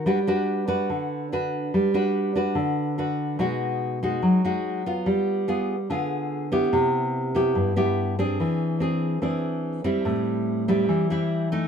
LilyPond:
\new Staff \with { instrumentName = "Nylon-string guitar" } { \time 4/4 \key g \major \tempo 4 = 144 << { <d' fis' b'>8 <d' fis' b'>4 <d' fis' b'>4. <d' fis' b'>4~ | <d' fis' b'>8 <d' fis' b'>4 <d' fis' b'>4. <d' fis' b'>4 | <gis dis' fis'>4. <gis dis' fis'>4 <gis dis' fis'>4 <b f'>8~ | <b f'>4 <b f' aes'>8 r8 <b f' aes'>4. <b e' g'>8~ |
<b e' g'>4. <b e' g'>4 <b e' g'>4 <c' d' aes'>8~ | <c' d' aes'>4 <bis d' gis'>4 <bis d' gis'>4. <g bis e'>8~ | <g bis e'>4. <g c' e'>4 <g c' e'>4 <a ees'>8 | } \\ { g2 d2 | g2 d2 | b,2 fis2 | g2 d2 |
c2 g,2 | e2 e2 | a,2 e2 | } >> }